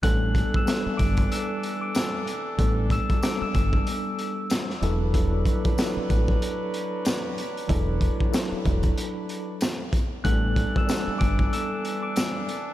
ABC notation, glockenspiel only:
X:1
M:4/4
L:1/16
Q:"Swing 16ths" 1/4=94
K:Em
V:1 name="Glockenspiel"
[f'f'']3 [e'e'']3 [d'd'']2 [e'e'']3 [d'd'']4- [d'd''] | z2 [e'e'']2 [d'd''] [e'e''] [e'e'']3 z6 z | z16 | z16 |
[f'f'']3 [e'e'']3 [d'd'']2 [e'e'']3 [d'd'']4- [d'd''] |]